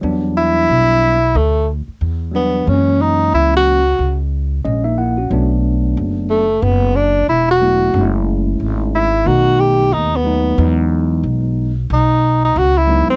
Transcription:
0.01 E2 F#3 G3 B3 D4
0.37 E4
0.69 B1
1.35 D2 A3
1.88 muted upright bass stroke
2.01 E2
2.32 F#3 G3 B3 D4
2.64 F#2 E3 G#3 A#3 C4
2.68 C#4
2.74 C#4
3.02 D#4
3.33 C#2 E4
3.57 F#4
3.99 C#2
4.64 A#1 G#3 C#4 D#5
4.84 A#3 D#4 E5
4.98 A#3 E4 F#5
5.17 C#4 F#4
5.30 B1 F#3 A3 B3 D4
5.97 F#1
6.30 A3
6.62 F#1 B3
6.96 D4
7.28 E1 E4
7.51 F#4
7.60 F#3 A3 B3 E4
7.92 F#1 G#3 A3 C#4 D#4
8.02 E4
8.60 G#1
8.95 E4
9.25 B1 D#3 A3 B3 D#4 F#4
9.60 G4
9.92 D#2 D#4
10.16 B3
10.24 F#3 A3 B3 D#4
10.56 E2 F#3 G3 B3 D#4
10.64 G#3
11.24 B1
11.90 B1 D#4
12.45 D#4
12.56 C#2 F#4
12.78 E4
12.87 F#3 G#3 B3 D#4
13.08 C4, muted upright bass stroke

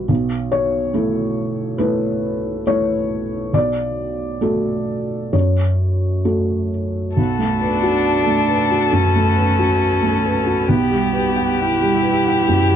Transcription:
Already playing: G3 F#4 B4
0.09 B1
0.52 C#5
0.94 A3 E4 A4
1.78 A3 E4 A4 B4
2.67 A3 E4 A4 C#5
3.53 B1 D5
4.41 A3 F#4 A4
5.33 F#2 C#5
6.25 A3 F#4 A4
7.17 B1 A3 F#4 A4 B4
7.39 A3
7.61 D4 B4
7.83 F#4
8.26 A3
8.49 B4
8.71 F#4
8.92 F#2 C#4
9.15 A3
9.36 B4
9.59 F#4
10.03 A3
10.25 B4
10.46 F#4
10.67 B1 B3 G4 B4 F#5
10.91 G3
11.13 B4
11.36 F#5
11.60 E4
11.81 G3
12.03 B4
12.26 F#5
12.49 F#2
12.69 G3

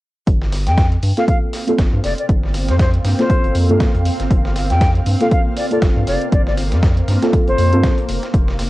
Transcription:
0.27 G1 C4, kick, closed hi-hat
0.42 A#3, snare
0.52 snare, closed hi-hat, open hi-hat
0.57 F5
0.67 F2 G5, snare, closed hi-hat
0.78 kick, snare, closed hi-hat
0.92 closed hi-hat
1.03 G2, closed hi-hat, open hi-hat
1.17 A#3 C4 F4 A4 F5, snare, closed hi-hat
1.28 F5, kick, closed hi-hat
1.53 snare, closed hi-hat, open hi-hat
1.67 A#3 C4 F4 A4, closed hi-hat
1.78 G1, kick, snare, closed hi-hat
1.93 G2
2.04 F1 D5, snare, closed hi-hat, open hi-hat
2.18 D5, closed hi-hat
2.29 G1, kick, closed hi-hat
2.43 snare
2.54 snare, closed hi-hat, open hi-hat
2.68 F2 C5, snare, closed hi-hat
2.79 C5, kick, snare, closed hi-hat
2.94 closed hi-hat
3.05 G2, snare, closed hi-hat, open hi-hat
3.19 A#3 C4 F4 A4 C5, snare, closed hi-hat
3.30 kick, closed hi-hat
3.44 G1, closed hi-hat
3.55 F2, closed hi-hat, open hi-hat
3.69 G2 A#3 C4 F4 A4, closed hi-hat
3.80 kick, snare, closed hi-hat
3.95 F2, closed hi-hat
4.05 open hi-hat
4.20 G1, snare, closed hi-hat
4.31 G1, kick, closed hi-hat
4.45 snare
4.56 snare, closed hi-hat, open hi-hat
4.70 F2 G5, snare, closed hi-hat
4.81 kick, snare, closed hi-hat
4.95 closed hi-hat
5.06 G2, closed hi-hat, open hi-hat
5.20 A#3 C4 F4 A4 F5, snare, closed hi-hat
5.31 F5, kick, closed hi-hat
5.57 D5, snare, closed hi-hat, open hi-hat
5.70 A#3 C4 F4 A4 D5, closed hi-hat
5.82 G1, kick, snare, closed hi-hat
5.96 G2
6.07 F1 D5, snare, closed hi-hat, open hi-hat
6.21 closed hi-hat
6.32 G1 D5, kick, closed hi-hat
6.47 D5, snare
6.57 snare, closed hi-hat, open hi-hat
6.72 F2, snare, closed hi-hat
6.83 kick, snare, closed hi-hat
6.97 closed hi-hat
7.08 G2, snare, closed hi-hat, open hi-hat
7.22 A#3 C4 F4 A4, snare, closed hi-hat
7.33 kick, closed hi-hat
7.47 G1 C5, closed hi-hat
7.58 F2, closed hi-hat, open hi-hat
7.72 G2 A#3 C4 F4 A4, closed hi-hat
7.84 kick, snare, closed hi-hat
7.98 closed hi-hat
8.09 F1, open hi-hat
8.23 snare, closed hi-hat
8.34 F1 D#4, kick, closed hi-hat
8.48 snare
8.59 snare, closed hi-hat, open hi-hat

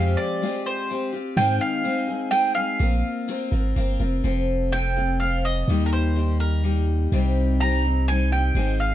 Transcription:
Already playing: F2 F3 G#3 C4 F4 G4 F5
0.17 D5
0.42 G#3 C4 F4 G4
0.66 C5
0.90 G#3 C4 F4 G4
1.13 C4 F4 G4
1.37 G#2 D#3 G#3 C4 D#4 G#4 G5
1.61 F5
1.84 G#3 C4 D#4 G#4
2.08 G#3 C4 D#4 G#4
2.31 G#3 C4 D#4 G#4 G5
2.55 G#3 C4 D#4 G#4 F5
2.79 A#1 A#3 C4 F4 A#4
3.28 A#3 C4 F4 A#4
3.51 G#1 C4 F4 A#4
3.76 G1 A#3 C4 F4 A#4
3.99 F1 C4 F4 A#4
4.24 F1 F3 C4 F4 A4
4.72 F3 C4 F4 A4 G5
4.96 C4 F4 A4
5.20 F3 C4 F4 A4 F5
5.45 D#5
5.68 D#2 D#3 G3 A#3 D#4 G4
5.86 A#4
5.93 C5
6.16 G3 A#3 D#4 G4
6.40 A#4
6.63 G3 A#3 D#4 G4
7.12 C2 C3 G3 C4 D#4 G4
7.60 G3 C4 D#4 G4 A#5
7.84 C4 D#4 G4
8.08 G3 C4 D#4 G4 G#5
8.32 C4 D#4 G4 G5
8.55 G#1 G#2 D#3 G#3 C4 D#4 G#4
8.80 F5

